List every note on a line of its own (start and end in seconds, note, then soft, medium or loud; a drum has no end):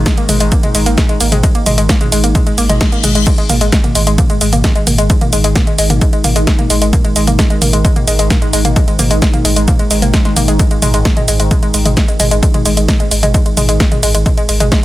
0.00 3.26 G#2 medium
0.00 3.26 D#3 medium
0.06 0.11 G#3 loud
0.06 kick loud
0.06 snare loud
0.06 closed hi-hat medium
0.06 ride medium
0.06 shaker soft
0.17 0.22 A#3 medium
0.17 ride medium
0.17 shaker soft
0.29 0.40 G#1 loud
0.29 0.33 G#3 loud
0.29 open hi-hat loud
0.29 mid tom medium
0.29 ride medium
0.29 shaker medium
0.40 0.52 G#1 medium
0.40 0.45 G#3 loud
0.40 closed hi-hat medium
0.40 ride medium
0.40 shaker soft
0.52 0.56 A#3 medium
0.52 kick loud
0.52 closed hi-hat medium
0.52 ride medium
0.52 shaker soft
0.63 0.68 G#3 loud
0.63 mid tom medium
0.63 ride medium
0.63 shaker soft
0.75 0.86 G#1 loud
0.75 0.79 G#3 loud
0.75 open hi-hat loud
0.75 ride medium
0.75 shaker medium
0.86 0.97 G#1 medium
0.86 0.91 A#3 medium
0.86 closed hi-hat medium
0.86 ride medium
0.86 shaker soft
0.98 1.02 G#3 loud
0.98 kick loud
0.98 snare loud
0.98 closed hi-hat medium
0.98 mid tom medium
0.98 ride medium
0.98 shaker soft
1.09 1.14 G#3 loud
1.09 ride medium
1.09 shaker soft
1.20 1.32 G#1 loud
1.20 1.25 A#3 medium
1.20 open hi-hat loud
1.20 ride medium
1.20 shaker medium
1.32 1.43 G#1 medium
1.32 1.36 G#3 loud
1.32 closed hi-hat medium
1.32 mid tom medium
1.32 ride medium
1.32 shaker soft
1.43 1.48 G#3 loud
1.43 kick loud
1.43 closed hi-hat medium
1.43 ride medium
1.43 shaker soft
1.55 1.59 A#3 medium
1.55 ride medium
1.55 shaker soft
1.66 1.77 G#1 loud
1.66 1.71 G#3 loud
1.66 open hi-hat loud
1.66 mid tom medium
1.66 ride medium
1.66 shaker medium
1.78 1.89 G#1 medium
1.78 1.82 G#3 loud
1.78 closed hi-hat medium
1.78 ride medium
1.78 shaker soft
1.89 1.94 A#3 medium
1.89 kick loud
1.89 snare loud
1.89 closed hi-hat medium
1.89 ride medium
1.89 shaker soft
2.01 2.05 G#3 loud
2.01 mid tom medium
2.01 ride medium
2.01 shaker soft
2.12 2.23 G#1 loud
2.12 2.17 G#3 loud
2.12 open hi-hat loud
2.12 ride medium
2.12 shaker medium
2.24 2.35 G#1 medium
2.24 2.28 A#3 medium
2.24 closed hi-hat medium
2.24 ride medium
2.24 shaker soft
2.35 2.40 G#3 loud
2.35 kick loud
2.35 closed hi-hat medium
2.35 mid tom medium
2.35 ride medium
2.35 reverse cymbal medium
2.35 shaker soft
2.47 2.51 G#3 loud
2.47 ride medium
2.47 shaker soft
2.58 2.69 G#1 loud
2.58 2.62 A#3 medium
2.58 open hi-hat loud
2.58 ride medium
2.58 shaker medium
2.69 2.81 G#1 medium
2.69 2.74 G#3 loud
2.69 closed hi-hat medium
2.69 mid tom medium
2.69 ride medium
2.69 shaker soft
2.81 2.85 G#3 loud
2.81 kick loud
2.81 snare loud
2.81 closed hi-hat medium
2.81 ride medium
2.81 shaker soft
2.92 2.97 A#3 medium
2.92 ride medium
2.92 shaker soft
3.04 3.15 G#1 medium
3.04 3.08 G#3 loud
3.04 open hi-hat loud
3.04 mid tom medium
3.04 ride medium
3.04 shaker medium
3.15 3.26 G#1 medium
3.15 3.20 G#3 loud
3.15 closed hi-hat medium
3.15 ride medium
3.15 shaker soft
3.27 14.85 G#2 medium
3.27 14.85 D#3 medium
3.27 3.31 G#3 loud
3.27 kick loud
3.27 closed hi-hat medium
3.27 crash medium
3.27 ride medium
3.27 shaker soft
3.38 3.43 G#3 loud
3.38 ride medium
3.38 shaker soft
3.50 3.61 G#1 loud
3.50 3.54 A#3 medium
3.50 open hi-hat loud
3.50 mid tom medium
3.50 ride medium
3.50 shaker medium
3.61 3.72 G#1 medium
3.61 3.65 G#3 loud
3.61 closed hi-hat medium
3.61 ride medium
3.61 shaker soft
3.72 3.77 G#3 loud
3.72 kick loud
3.72 snare loud
3.72 closed hi-hat medium
3.72 ride medium
3.72 shaker soft
3.84 3.88 A#3 medium
3.84 mid tom medium
3.84 ride medium
3.84 shaker soft
3.95 4.06 G#1 loud
3.95 4.00 G#3 loud
3.95 open hi-hat loud
3.95 ride medium
3.95 shaker medium
4.07 4.18 G#1 medium
4.07 4.11 G#3 loud
4.07 closed hi-hat medium
4.07 ride medium
4.07 shaker soft
4.18 4.23 A#3 medium
4.18 kick loud
4.18 closed hi-hat medium
4.18 mid tom medium
4.18 ride medium
4.18 shaker soft
4.30 4.34 G#3 loud
4.30 ride medium
4.30 shaker soft
4.41 4.52 G#1 loud
4.41 4.46 G#3 loud
4.41 open hi-hat loud
4.41 ride medium
4.41 shaker medium
4.53 4.64 G#1 medium
4.53 4.57 A#3 medium
4.53 closed hi-hat medium
4.53 mid tom medium
4.53 ride medium
4.53 shaker soft
4.64 4.69 G#3 loud
4.64 kick loud
4.64 snare loud
4.64 closed hi-hat medium
4.64 ride medium
4.64 shaker soft
4.76 4.80 G#3 loud
4.76 ride medium
4.76 shaker soft
4.87 4.98 G#1 loud
4.87 4.91 A#3 medium
4.87 open hi-hat loud
4.87 mid tom medium
4.87 ride medium
4.87 shaker medium
4.98 5.10 G#1 medium
4.98 5.03 G#3 loud
4.98 closed hi-hat medium
4.98 ride medium
4.98 shaker soft
5.10 5.14 G#3 loud
5.10 kick loud
5.10 closed hi-hat medium
5.10 ride medium
5.10 shaker soft
5.21 5.26 A#3 medium
5.21 mid tom medium
5.21 ride medium
5.21 shaker soft
5.33 5.44 G#1 loud
5.33 5.37 G#3 loud
5.33 open hi-hat loud
5.33 ride medium
5.33 shaker medium
5.44 5.55 G#1 medium
5.44 5.49 G#3 loud
5.44 closed hi-hat medium
5.44 ride medium
5.44 shaker soft
5.56 5.60 A#3 medium
5.56 kick loud
5.56 snare loud
5.56 closed hi-hat medium
5.56 mid tom medium
5.56 ride medium
5.56 shaker soft
5.67 5.72 G#3 loud
5.67 ride medium
5.67 shaker soft
5.78 5.90 G#1 loud
5.78 5.83 G#3 loud
5.78 open hi-hat loud
5.78 ride medium
5.78 shaker medium
5.90 6.01 G#1 medium
5.90 5.95 A#3 medium
5.90 closed hi-hat medium
5.90 mid tom medium
5.90 ride medium
5.90 shaker soft
6.01 6.06 G#3 loud
6.01 kick loud
6.01 closed hi-hat medium
6.01 ride medium
6.01 shaker soft
6.13 6.17 G#3 loud
6.13 ride medium
6.13 shaker soft
6.24 6.35 G#1 loud
6.24 6.29 A#3 medium
6.24 open hi-hat loud
6.24 mid tom medium
6.24 ride medium
6.24 shaker medium
6.36 6.47 G#1 medium
6.36 6.40 G#3 loud
6.36 closed hi-hat medium
6.36 ride medium
6.36 shaker soft
6.47 6.52 G#3 loud
6.47 kick loud
6.47 snare loud
6.47 closed hi-hat medium
6.47 ride medium
6.47 shaker soft
6.59 6.63 A#3 medium
6.59 mid tom medium
6.59 ride medium
6.59 shaker soft
6.70 6.81 G#1 loud
6.70 6.75 G#3 loud
6.70 open hi-hat loud
6.70 ride medium
6.70 shaker medium
6.82 6.93 G#1 medium
6.82 6.86 G#3 loud
6.82 closed hi-hat medium
6.82 ride medium
6.82 shaker soft
6.93 6.98 A#3 medium
6.93 kick loud
6.93 closed hi-hat medium
6.93 mid tom medium
6.93 ride medium
6.93 shaker soft
7.04 7.09 G#3 loud
7.04 ride medium
7.04 shaker soft
7.16 7.27 G#1 loud
7.16 7.20 G#3 loud
7.16 open hi-hat loud
7.16 ride medium
7.16 shaker medium
7.27 7.39 G#1 medium
7.27 7.32 A#3 medium
7.27 closed hi-hat medium
7.27 mid tom medium
7.27 ride medium
7.27 shaker soft
7.39 7.43 G#3 loud
7.39 kick loud
7.39 snare loud
7.39 closed hi-hat medium
7.39 ride medium
7.39 shaker soft
7.50 7.55 G#3 loud
7.50 ride medium
7.50 shaker soft
7.62 7.73 G#1 loud
7.62 7.66 A#3 medium
7.62 open hi-hat loud
7.62 mid tom medium
7.62 ride medium
7.62 shaker medium
7.73 7.84 G#1 medium
7.73 7.78 G#3 loud
7.73 closed hi-hat medium
7.73 ride medium
7.73 shaker soft
7.85 7.89 G#3 loud
7.85 kick loud
7.85 closed hi-hat medium
7.85 ride medium
7.85 shaker soft
7.96 8.01 A#3 medium
7.96 mid tom medium
7.96 ride medium
7.96 shaker soft
8.08 8.19 G#1 loud
8.08 8.12 G#3 loud
8.08 open hi-hat loud
8.08 ride medium
8.08 shaker medium
8.19 8.30 G#1 medium
8.19 8.24 G#3 loud
8.19 closed hi-hat medium
8.19 ride medium
8.19 shaker soft
8.30 8.35 A#3 medium
8.30 kick loud
8.30 snare loud
8.30 closed hi-hat medium
8.30 mid tom medium
8.30 ride medium
8.30 shaker soft
8.42 8.46 G#3 loud
8.42 ride medium
8.42 shaker soft
8.53 8.64 G#1 loud
8.53 8.58 G#3 loud
8.53 open hi-hat loud
8.53 ride medium
8.53 shaker medium
8.65 8.76 G#1 medium
8.65 8.69 A#3 medium
8.65 closed hi-hat medium
8.65 mid tom medium
8.65 ride medium
8.65 shaker soft
8.76 8.81 G#3 loud
8.76 kick loud
8.76 closed hi-hat medium
8.76 ride medium
8.76 shaker soft
8.88 8.92 G#3 loud
8.88 ride medium
8.88 shaker soft
8.99 9.10 G#1 loud
8.99 9.04 A#3 medium
8.99 open hi-hat loud
8.99 mid tom medium
8.99 ride medium
8.99 shaker medium
9.11 9.22 G#1 medium
9.11 9.15 G#3 loud
9.11 closed hi-hat medium
9.11 ride medium
9.11 shaker soft
9.22 9.27 G#3 loud
9.22 kick loud
9.22 snare loud
9.22 closed hi-hat medium
9.22 ride medium
9.22 shaker soft
9.33 9.38 A#3 medium
9.33 mid tom medium
9.33 ride medium
9.33 shaker soft
9.45 9.56 G#1 loud
9.45 9.49 G#3 loud
9.45 open hi-hat loud
9.45 ride medium
9.45 shaker medium
9.56 9.68 G#1 medium
9.56 9.61 G#3 loud
9.56 closed hi-hat medium
9.56 ride medium
9.56 shaker soft
9.68 9.72 A#3 medium
9.68 kick loud
9.68 closed hi-hat medium
9.68 mid tom medium
9.68 ride medium
9.68 shaker soft
9.79 9.84 G#3 loud
9.79 ride medium
9.79 shaker soft
9.91 10.02 G#1 loud
9.91 9.95 G#3 loud
9.91 open hi-hat loud
9.91 ride medium
9.91 shaker medium
10.02 10.13 G#1 medium
10.02 10.07 A#3 medium
10.02 closed hi-hat medium
10.02 mid tom medium
10.02 ride medium
10.02 shaker soft
10.14 10.18 G#3 loud
10.14 kick loud
10.14 snare loud
10.14 closed hi-hat medium
10.14 ride medium
10.14 shaker soft
10.25 10.30 G#3 loud
10.25 snare soft
10.25 ride medium
10.25 shaker soft
10.36 10.48 G#1 loud
10.36 10.41 A#3 medium
10.36 open hi-hat loud
10.36 mid tom medium
10.36 ride medium
10.36 shaker medium
10.48 10.59 G#1 medium
10.48 10.53 G#3 loud
10.48 closed hi-hat medium
10.48 ride medium
10.48 shaker soft
10.59 10.64 G#3 loud
10.59 kick loud
10.59 closed hi-hat medium
10.59 ride medium
10.59 shaker soft
10.71 10.74 G#3 medium
10.71 ride medium
10.71 shaker soft
10.82 10.93 G#1 loud
10.82 10.87 G#3 loud
10.82 open hi-hat loud
10.82 mid tom medium
10.82 ride medium
10.82 shaker medium
10.94 11.05 G#1 medium
10.94 10.98 G#3 loud
10.94 closed hi-hat medium
10.94 ride medium
10.94 shaker soft
11.05 11.08 G#3 medium
11.05 kick loud
11.05 snare loud
11.05 closed hi-hat medium
11.05 ride medium
11.05 shaker soft
11.17 11.21 G#3 loud
11.17 mid tom medium
11.17 ride medium
11.17 shaker soft
11.28 11.39 G#1 loud
11.28 11.33 G#3 loud
11.28 open hi-hat loud
11.28 ride medium
11.28 shaker medium
11.40 11.51 G#1 medium
11.40 11.42 G#3 medium
11.40 closed hi-hat medium
11.40 ride medium
11.40 shaker soft
11.51 11.56 G#3 loud
11.51 kick loud
11.51 closed hi-hat medium
11.51 mid tom medium
11.51 ride medium
11.51 shaker soft
11.63 11.67 G#3 loud
11.63 ride medium
11.63 shaker soft
11.74 11.85 G#1 loud
11.74 11.77 G#3 medium
11.74 open hi-hat loud
11.74 ride medium
11.74 shaker medium
11.86 11.97 G#1 medium
11.86 11.90 G#3 loud
11.86 closed hi-hat medium
11.86 mid tom medium
11.86 ride medium
11.86 shaker soft
11.97 12.01 G#3 loud
11.97 kick loud
11.97 snare loud
11.97 closed hi-hat medium
11.97 ride medium
11.97 shaker soft
12.08 12.11 G#3 medium
12.08 ride medium
12.08 shaker soft
12.20 12.31 G#1 loud
12.20 12.24 G#3 loud
12.20 open hi-hat loud
12.20 mid tom medium
12.20 ride medium
12.20 shaker medium
12.31 12.43 G#1 medium
12.31 12.36 G#3 loud
12.31 closed hi-hat medium
12.31 ride medium
12.31 shaker soft
12.43 12.45 G#3 medium
12.43 kick loud
12.43 closed hi-hat medium
12.43 ride medium
12.43 shaker soft
12.54 12.59 G#3 loud
12.54 mid tom medium
12.54 ride medium
12.54 shaker soft
12.66 12.77 G#1 loud
12.66 12.70 G#3 loud
12.66 open hi-hat loud
12.66 ride medium
12.66 shaker medium
12.77 12.88 G#1 medium
12.77 12.80 G#3 medium
12.77 closed hi-hat medium
12.77 ride medium
12.77 shaker soft
12.88 12.93 G#3 loud
12.88 kick loud
12.88 snare loud
12.88 closed hi-hat medium
12.88 mid tom medium
12.88 ride medium
12.88 shaker soft
13.00 13.04 G#3 loud
13.00 ride medium
13.00 shaker soft
13.11 13.22 G#1 loud
13.11 13.14 G#3 medium
13.11 open hi-hat loud
13.11 ride medium
13.11 shaker medium
13.23 13.34 G#1 medium
13.23 13.27 G#3 loud
13.23 closed hi-hat medium
13.23 mid tom medium
13.23 ride medium
13.23 shaker soft
13.34 13.39 G#3 loud
13.34 kick loud
13.34 closed hi-hat medium
13.34 ride medium
13.34 shaker soft
13.46 13.48 G#3 medium
13.46 ride medium
13.46 shaker soft
13.57 13.68 G#1 loud
13.57 13.62 G#3 loud
13.57 open hi-hat loud
13.57 mid tom medium
13.57 ride medium
13.57 shaker medium
13.69 13.80 G#1 medium
13.69 13.73 G#3 loud
13.69 closed hi-hat medium
13.69 ride medium
13.69 shaker soft
13.80 kick loud
13.80 snare loud
13.80 closed hi-hat medium
13.80 ride medium
13.80 shaker soft
13.92 13.96 G#3 loud
13.92 mid tom medium
13.92 ride medium
13.92 shaker soft
14.03 14.14 G#1 loud
14.03 14.07 G#3 loud
14.03 open hi-hat loud
14.03 ride medium
14.03 shaker medium
14.15 14.26 G#1 medium
14.15 14.17 G#3 medium
14.15 closed hi-hat medium
14.15 ride medium
14.15 shaker soft
14.26 14.30 G#3 loud
14.26 kick loud
14.26 closed hi-hat medium
14.26 mid tom medium
14.26 ride medium
14.26 shaker soft
14.37 14.42 G#3 loud
14.37 ride medium
14.37 shaker soft
14.49 14.60 G#1 medium
14.49 14.51 G#3 medium
14.49 open hi-hat loud
14.49 ride medium
14.49 shaker medium
14.60 14.72 G#1 medium
14.60 14.65 G#3 loud
14.60 closed hi-hat medium
14.60 mid tom medium
14.60 ride medium
14.60 shaker soft
14.72 14.76 G#3 loud
14.72 kick loud
14.72 snare loud
14.72 closed hi-hat medium
14.72 ride medium
14.72 shaker soft